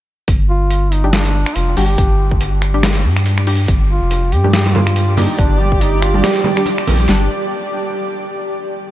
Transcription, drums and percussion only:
0.28 kick loud
0.28 closed hi-hat medium
0.70 closed hi-hat medium
0.92 closed hi-hat medium
1.13 snare loud
1.13 closed hi-hat medium
1.25 closed hi-hat medium
1.46 finger snap medium
1.46 closed hi-hat medium
1.56 closed hi-hat medium
1.77 open hi-hat loud
1.98 kick loud
1.98 closed hi-hat medium
2.31 kick medium
2.41 closed hi-hat medium
2.62 finger snap medium
2.62 closed hi-hat medium
2.83 finger snap medium
2.83 snare loud
2.83 closed hi-hat medium
2.95 closed hi-hat medium
3.17 finger snap medium
3.17 closed hi-hat medium
3.26 closed hi-hat medium
3.38 finger snap medium
3.47 open hi-hat loud
3.68 kick loud
3.68 closed hi-hat medium
4.11 closed hi-hat medium
4.32 closed hi-hat medium
4.44 high conga medium
4.53 snare loud
4.53 closed hi-hat medium
4.66 closed hi-hat medium
4.66 high conga medium
4.75 muted conga medium
4.75 low conga medium
4.87 finger snap medium
4.87 closed hi-hat medium
4.96 closed hi-hat medium
5.17 open hi-hat medium
5.17 low conga loud
5.39 kick loud
5.39 closed hi-hat medium
5.61 muted conga soft
5.72 kick medium
5.81 closed hi-hat medium
6.02 finger snap medium
6.02 closed hi-hat medium
6.14 high conga medium
6.24 finger snap medium
6.24 snare loud
6.24 closed hi-hat medium
6.36 closed hi-hat medium
6.44 high conga loud
6.44 low conga medium
6.57 finger snap medium
6.57 closed hi-hat medium
6.66 closed hi-hat medium
6.66 muted conga medium
6.78 finger snap medium
6.87 open hi-hat medium
6.87 low conga medium
7.00 muted conga medium
7.09 snare loud

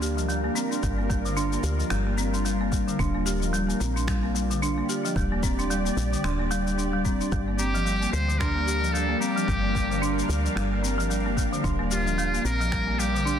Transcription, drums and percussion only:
0.02 shaker medium
0.18 shaker soft
0.29 shaker soft
0.56 shaker medium
0.72 shaker soft
0.83 kick loud
0.83 shaker soft
1.10 kick loud
1.10 shaker medium
1.26 shaker soft
1.37 shaker soft
1.53 shaker soft
1.64 shaker medium
1.80 shaker soft
1.90 finger snap medium
1.90 shaker soft
2.18 shaker medium
2.34 shaker soft
2.46 shaker soft
2.72 kick medium
2.72 shaker medium
2.88 shaker soft
2.99 kick loud
2.99 shaker soft
3.27 shaker medium
3.42 shaker soft
3.54 shaker soft
3.70 shaker soft
3.81 shaker medium
3.97 shaker soft
4.08 finger snap medium
4.08 kick loud
4.08 shaker soft
4.36 shaker medium
4.51 shaker soft
4.63 shaker soft
4.90 shaker medium
5.05 shaker soft
5.16 kick loud
5.16 shaker soft
5.43 kick loud
5.43 shaker medium
5.59 shaker soft
5.71 shaker soft
5.86 shaker soft
5.98 shaker medium
6.13 shaker soft
6.24 finger snap medium
6.24 shaker soft
6.52 shaker medium
6.67 shaker soft
6.79 shaker soft
7.05 kick medium
7.05 shaker medium
7.21 shaker soft
7.32 kick loud
7.32 shaker soft
7.59 shaker medium
7.75 shaker soft
7.87 shaker soft
8.02 shaker soft
8.14 shaker medium
8.30 shaker soft
8.40 finger snap medium
8.40 kick loud
8.40 shaker soft
8.68 shaker medium
8.84 shaker soft
8.95 shaker soft
9.22 shaker medium
9.38 shaker soft
9.48 kick loud
9.48 shaker soft
9.75 kick medium
9.75 shaker medium
9.92 shaker soft
10.03 shaker soft
10.19 shaker soft
10.30 shaker medium
10.46 shaker soft
10.57 finger snap medium
10.57 shaker soft
10.85 shaker medium
11.00 shaker soft
11.11 shaker soft
11.37 kick medium
11.37 shaker medium
11.53 shaker soft
11.64 kick loud
11.64 shaker soft
11.91 shaker medium
12.07 shaker soft
12.19 shaker soft
12.34 shaker soft
12.46 shaker medium
12.61 shaker soft
12.72 finger snap medium
12.72 kick loud
12.72 shaker soft
13.00 shaker medium
13.16 shaker soft
13.27 shaker soft

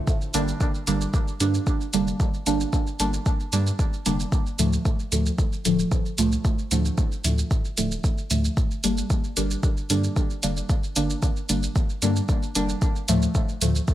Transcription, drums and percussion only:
0.07 kick loud
0.07 shaker soft
0.21 shaker soft
0.34 closed hi-hat medium
0.34 shaker medium
0.48 shaker soft
0.61 kick loud
0.61 shaker soft
0.75 shaker soft
0.87 closed hi-hat medium
0.87 shaker medium
1.01 shaker soft
1.14 kick loud
1.14 shaker soft
1.28 shaker soft
1.40 closed hi-hat medium
1.40 shaker medium
1.54 shaker soft
1.67 kick loud
1.67 shaker soft
1.81 shaker soft
1.94 closed hi-hat medium
1.94 shaker medium
2.07 shaker soft
2.20 kick loud
2.20 shaker soft
2.34 shaker soft
2.47 closed hi-hat medium
2.47 shaker medium
2.60 shaker soft
2.73 kick loud
2.73 shaker soft
2.87 shaker soft
3.00 closed hi-hat medium
3.00 shaker medium
3.14 shaker soft
3.26 kick loud
3.26 shaker soft
3.40 shaker soft
3.53 closed hi-hat medium
3.53 shaker medium
3.67 shaker soft
3.79 kick loud
3.79 shaker soft
3.93 shaker soft
4.06 closed hi-hat medium
4.06 shaker medium
4.20 shaker soft
4.32 kick loud
4.32 shaker soft
4.46 shaker soft
4.59 closed hi-hat medium
4.59 shaker medium
4.73 shaker soft
4.85 kick loud
4.85 shaker soft
5.00 shaker soft
5.12 closed hi-hat medium
5.12 shaker medium
5.26 shaker soft
5.38 kick loud
5.38 shaker soft
5.53 shaker soft
5.65 closed hi-hat medium
5.65 shaker medium
5.79 shaker soft
5.92 kick loud
5.92 shaker soft
6.06 shaker soft
6.18 closed hi-hat medium
6.18 shaker medium
6.32 shaker soft
6.45 kick loud
6.45 shaker soft
6.59 shaker soft
6.71 closed hi-hat medium
6.71 shaker medium
6.85 shaker soft
6.98 kick loud
6.98 shaker soft
7.12 shaker soft
7.24 closed hi-hat medium
7.24 shaker medium
7.38 shaker soft
7.51 kick loud
7.51 shaker soft
7.65 shaker soft
7.78 closed hi-hat medium
7.78 shaker medium
7.91 shaker soft
8.04 kick loud
8.04 shaker soft
8.18 shaker soft
8.31 closed hi-hat medium
8.31 shaker medium
8.45 shaker soft
8.57 kick loud
8.57 shaker soft
8.71 shaker soft
8.84 closed hi-hat medium
8.84 shaker medium
8.98 shaker soft
9.10 kick loud
9.10 shaker soft
9.24 shaker soft
9.37 closed hi-hat medium
9.37 shaker medium
9.51 shaker soft
9.63 kick loud
9.63 shaker soft
9.77 shaker soft
9.90 closed hi-hat medium
9.90 shaker medium
10.04 shaker soft
10.16 kick loud
10.16 shaker soft
10.30 shaker soft
10.43 closed hi-hat medium
10.43 shaker medium
10.57 shaker soft
10.70 kick loud
10.70 shaker soft
10.84 shaker soft
10.96 closed hi-hat medium
10.96 shaker medium
11.10 shaker soft
11.23 kick loud
11.23 shaker soft
11.37 shaker soft
11.49 closed hi-hat medium
11.49 shaker medium
11.63 shaker soft
11.76 kick loud
11.76 shaker soft
11.90 shaker soft
12.02 closed hi-hat medium
12.02 shaker medium
12.16 shaker soft
12.29 kick loud
12.29 shaker soft
12.43 shaker soft
12.55 closed hi-hat medium
12.55 shaker medium
12.69 shaker soft
12.82 kick loud
12.82 shaker soft
12.96 shaker soft
13.08 closed hi-hat medium
13.08 shaker medium
13.22 shaker soft
13.35 kick loud
13.35 shaker soft
13.49 shaker soft
13.62 closed hi-hat medium
13.62 shaker medium
13.75 shaker soft
13.88 kick loud
13.88 shaker soft

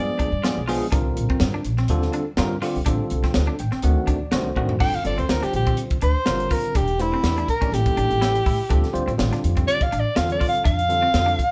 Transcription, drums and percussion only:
0.20 kick medium
0.20 closed hi-hat medium
0.44 snare medium
0.44 closed hi-hat medium
0.69 snare soft
0.69 open hi-hat medium
0.92 kick loud
0.92 closed hi-hat medium
1.17 closed hi-hat medium
1.30 kick medium
1.40 snare loud
1.40 closed hi-hat medium
1.65 closed hi-hat medium
1.77 snare soft
1.88 closed hi-hat medium
2.02 snare soft
2.13 closed hi-hat medium
2.37 snare loud
2.37 closed hi-hat medium
2.62 snare soft
2.62 open hi-hat medium
2.86 kick loud
2.86 closed hi-hat medium
3.10 closed hi-hat medium
3.24 kick medium
3.24 snare soft
3.34 snare loud
3.34 closed hi-hat medium
3.59 closed hi-hat medium
3.71 snare soft
3.82 closed hi-hat medium
4.07 kick medium
4.07 closed hi-hat medium
4.32 snare loud
4.32 closed hi-hat medium
4.56 kick medium
4.69 floor tom medium
4.80 kick loud
4.80 crash loud
4.93 closed hi-hat soft
5.05 closed hi-hat medium
5.18 closed hi-hat soft
5.29 snare loud
5.29 closed hi-hat medium
5.43 snare soft
5.43 closed hi-hat soft
5.54 closed hi-hat medium
5.67 kick medium
5.67 closed hi-hat soft
5.77 closed hi-hat medium
5.90 kick medium
5.90 closed hi-hat soft
6.01 closed hi-hat medium
6.26 snare medium
6.26 closed hi-hat medium
6.40 closed hi-hat soft
6.50 kick medium
6.50 open hi-hat medium
6.64 closed hi-hat soft
6.75 kick loud
6.75 closed hi-hat medium
6.88 closed hi-hat soft
7.00 closed hi-hat medium
7.24 snare loud
7.24 closed hi-hat medium
7.37 closed hi-hat soft
7.48 kick medium
7.48 closed hi-hat medium
7.62 kick medium
7.62 closed hi-hat soft
7.74 closed hi-hat medium
7.86 kick medium
7.86 closed hi-hat soft
7.97 closed hi-hat medium
8.11 closed hi-hat soft
8.22 snare medium
8.22 closed hi-hat medium
8.35 closed hi-hat soft
8.46 kick medium
8.46 open hi-hat medium
8.70 kick loud
8.70 closed hi-hat medium
8.84 snare soft
8.84 closed hi-hat soft
8.95 closed hi-hat medium
9.08 closed hi-hat soft
9.19 snare loud
9.19 closed hi-hat medium
9.33 snare soft
9.33 closed hi-hat soft
9.44 closed hi-hat medium
9.57 kick medium
9.57 closed hi-hat soft
9.68 closed hi-hat medium
9.81 kick medium
9.81 closed hi-hat soft
9.92 closed hi-hat medium
10.16 snare medium
10.16 closed hi-hat medium
10.30 closed hi-hat soft
10.41 kick medium
10.41 open hi-hat medium
10.55 closed hi-hat soft
10.65 kick loud
10.65 closed hi-hat medium
10.79 closed hi-hat soft
10.90 closed hi-hat medium
11.14 snare loud
11.14 closed hi-hat medium
11.28 closed hi-hat soft
11.39 kick medium
11.39 closed hi-hat medium

